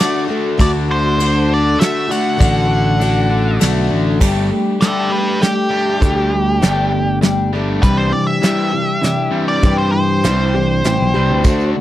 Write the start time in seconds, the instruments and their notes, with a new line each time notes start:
Already playing: twelve-string acoustic guitar D3 A3, overdriven electric guitar D3 D4, lead electric guitar D5
0.00 twelve-string acoustic guitar D4 F#4, snare, ride
0.28 overdriven electric guitar D3, twelve-string acoustic guitar A3 D4 F#4
0.58 picked electric bass D2, twelve-string acoustic guitar D3 A3 D4 F#4, lead electric guitar D5, kick, ride
0.89 overdriven electric guitar D3, lead electric guitar C5
1.18 twelve-string acoustic guitar D3 A3 D4 F#4, ride
1.50 overdriven electric guitar D3, lead electric guitar D5
1.77 twelve-string acoustic guitar D3 A3 D4, lead electric guitar E5
1.81 twelve-string acoustic guitar F#4, snare, ride
2.09 overdriven electric guitar D3, twelve-string acoustic guitar A3 D4 F#4, lead electric guitar F#5, ride
2.37 picked electric bass A1, twelve-string acoustic guitar D3 A3 D4 F#4, kick, ride
2.70 overdriven electric guitar D3
2.98 twelve-string acoustic guitar D3 A3 D4, ride
3.02 twelve-string acoustic guitar F#4
3.30 overdriven electric guitar D3
3.59 picked electric bass B1, twelve-string acoustic guitar D3 A3 D4 F#4, snare, ride
3.91 picked electric bass A1, overdriven electric guitar D3
4.20 picked electric bass G1, twelve-string acoustic guitar G3 A3 D4 G4, kick, crash
4.51 overdriven electric guitar G3 A3
4.80 twelve-string acoustic guitar G3 A3 D4 G4, lead electric guitar A4 D5, snare, closed hi-hat
5.11 overdriven electric guitar G3 A3, lead electric guitar G4 B4
5.41 twelve-string acoustic guitar G3 A3 D4 G4, lead electric guitar G4, snare, closed hi-hat
5.70 overdriven electric guitar G3 A3 D4
6.00 picked electric bass D2, twelve-string acoustic guitar G3 A3 D4 G4, kick, closed hi-hat
6.32 overdriven electric guitar G3 A3
6.61 picked electric bass G1, twelve-string acoustic guitar G3 A3 D4 G4, snare, closed hi-hat
6.92 overdriven electric guitar G3 A3
7.22 twelve-string acoustic guitar G3 A3 D4 G4, snare, closed hi-hat
7.53 overdriven electric guitar G3, twelve-string acoustic guitar A3 D4 G4
7.82 picked electric bass C2, twelve-string acoustic guitar C3 E3 G3 D4 G4, lead electric guitar B4, kick, closed hi-hat
7.97 lead electric guitar C5
8.12 overdriven electric guitar C3 E3, lead electric guitar D5
8.27 lead electric guitar E5
8.42 overdriven electric guitar C3, twelve-string acoustic guitar E3 G3 D4, snare, closed hi-hat
8.46 twelve-string acoustic guitar G4
8.72 overdriven electric guitar C3 E3, twelve-string acoustic guitar D4 G4
8.76 twelve-string acoustic guitar G3
9.02 overdriven electric guitar C3, twelve-string acoustic guitar E3 G3 D4 G4, snare, closed hi-hat
9.31 overdriven electric guitar C3 E3 G3
9.48 lead electric guitar D5
9.63 picked electric bass G2, twelve-string acoustic guitar C3 E3 G3 D4 G4, kick, closed hi-hat
9.78 lead electric guitar C5
9.92 overdriven electric guitar C3 E3, lead electric guitar C5
10.23 picked electric bass C2, overdriven electric guitar C3, twelve-string acoustic guitar E3 G3 D4 G4, snare, closed hi-hat
10.54 overdriven electric guitar C3 E3, twelve-string acoustic guitar G3 D4 G4
10.84 picked electric bass A1, overdriven electric guitar C3, twelve-string acoustic guitar E3 G3 D4 G4, snare, closed hi-hat
11.01 picked electric bass B1
11.14 picked electric bass C2, overdriven electric guitar C3 E3, twelve-string acoustic guitar G3 D4 G4
11.31 picked electric bass D2
11.44 picked electric bass D2, twelve-string acoustic guitar D3 A3 D4 F#4, kick, closed hi-hat, tambourine
11.60 tambourine
11.76 overdriven electric guitar D3 A3